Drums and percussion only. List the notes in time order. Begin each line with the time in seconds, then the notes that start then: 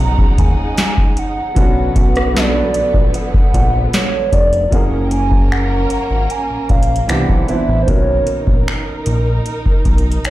0.18 kick
0.38 kick, closed hi-hat
0.77 snare, closed hi-hat
0.98 kick
1.17 closed hi-hat
1.56 kick, closed hi-hat
1.96 kick, closed hi-hat
2.16 cross-stick, closed hi-hat
2.37 snare
2.74 closed hi-hat
2.94 kick
3.14 closed hi-hat
3.34 kick
3.54 kick, closed hi-hat
3.93 snare, closed hi-hat
4.32 kick, closed hi-hat, open hi-hat
4.53 closed hi-hat
4.72 kick, closed hi-hat
5.11 closed hi-hat
5.31 kick
5.52 finger snap
5.90 closed hi-hat
6.30 closed hi-hat
6.69 kick, closed hi-hat
6.83 closed hi-hat
6.96 closed hi-hat
7.09 finger snap, closed hi-hat
7.29 kick
7.48 closed hi-hat
7.88 kick, closed hi-hat
8.27 closed hi-hat
8.47 kick
8.68 finger snap
9.06 closed hi-hat
9.46 closed hi-hat
9.66 kick
9.85 kick, closed hi-hat
9.98 closed hi-hat
10.12 closed hi-hat
10.25 finger snap, closed hi-hat